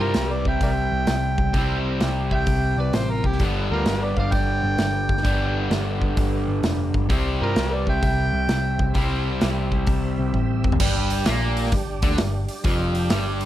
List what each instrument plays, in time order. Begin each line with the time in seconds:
Already playing: overdriven electric guitar C3 G3 C4 E4, tonewheel organ C4 G4 E5
0.00 picked electric bass G2, lead electric guitar F4, harmonica A#4
0.14 picked electric bass C2, snare, open hi-hat
0.32 lead electric guitar B4, harmonica D5
0.45 picked electric bass C2, lead electric guitar E5, harmonica G5, kick
0.61 picked electric bass C2, harmonica A#4 D5 G5, lead electric guitar E5, kick, open hi-hat
0.92 picked electric bass C2
1.07 picked electric bass C2, snare, open hi-hat
1.38 picked electric bass C2, kick
1.53 picked electric bass C2, overdriven electric guitar C3 G3 C4, kick, open hi-hat
1.57 overdriven electric guitar E4
2.01 picked electric bass C2, snare, open hi-hat
2.31 lead electric guitar E5, harmonica G5, kick
2.47 picked electric bass C2, kick, open hi-hat
2.77 picked electric bass C2, lead electric guitar B4, harmonica D5
2.93 picked electric bass A1, lead electric guitar G4, harmonica C5, snare, open hi-hat
3.10 lead electric guitar F4, harmonica A#4
3.24 picked electric bass C2, lead electric guitar E4, harmonica G4, kick
3.32 snare
3.40 picked electric bass G1, overdriven electric guitar G2 D3 G3 B3 D4, tonewheel organ B3 D4 G4, kick, open hi-hat
3.71 picked electric bass D2, lead electric guitar F4, harmonica A#4
3.86 picked electric bass G1, snare, open hi-hat
4.03 lead electric guitar B4, harmonica D5
4.17 picked electric bass G1, lead electric guitar D5, harmonica F5, kick
4.32 picked electric bass G1, lead electric guitar D5, harmonica G5, kick, open hi-hat
4.63 picked electric bass G1
4.78 picked electric bass G1, snare, open hi-hat
5.09 picked electric bass G1, kick
5.17 snare
5.23 picked electric bass G1, overdriven electric guitar G2 D3 G3 B3 D4, kick, open hi-hat
5.70 picked electric bass G1, snare, open hi-hat
6.02 kick
6.17 picked electric bass G1, kick, open hi-hat
6.48 picked electric bass G1
6.63 picked electric bass F1, snare, open hi-hat
6.94 picked electric bass G1, kick
7.09 picked electric bass C2, overdriven electric guitar C3 G3 C4 E4, tonewheel organ C4 G4 E5, kick, open hi-hat
7.41 picked electric bass G2, lead electric guitar F4, harmonica A#4
7.56 picked electric bass C2, snare, open hi-hat
7.73 lead electric guitar B4, harmonica D5
7.87 picked electric bass C2, lead electric guitar E5, harmonica G5, kick
8.03 picked electric bass C2, lead electric guitar E5, harmonica G5, kick, open hi-hat
8.33 picked electric bass C2
8.49 picked electric bass C2, snare, open hi-hat
8.79 picked electric bass C2, kick
8.94 picked electric bass C2, overdriven electric guitar C3 G3 C4 E4, kick, open hi-hat
9.41 picked electric bass C2, snare, open hi-hat
9.72 kick
9.87 picked electric bass C2, kick, open hi-hat
10.19 picked electric bass C2
10.34 picked electric bass A1, kick
10.64 picked electric bass F1, kick
10.72 floor tom
10.80 picked electric bass G1, overdriven electric guitar G2 G3, tonewheel organ G3 D4 G4, kick, crash
11.10 open hi-hat
11.26 picked electric bass A#1, overdriven electric guitar A#2 A#3, snare, open hi-hat
11.57 open hi-hat
11.65 snare
11.72 picked electric bass G1, overdriven electric guitar G2, kick, open hi-hat
12.02 picked electric bass D2, overdriven electric guitar D3 D4, kick, open hi-hat
12.11 snare
12.18 picked electric bass G1, overdriven electric guitar G2, snare, open hi-hat
12.48 open hi-hat
12.64 picked electric bass F1, overdriven electric guitar F2 F3, kick, open hi-hat
12.95 open hi-hat
13.10 picked electric bass G1, overdriven electric guitar G2 G3, snare, open hi-hat
13.41 open hi-hat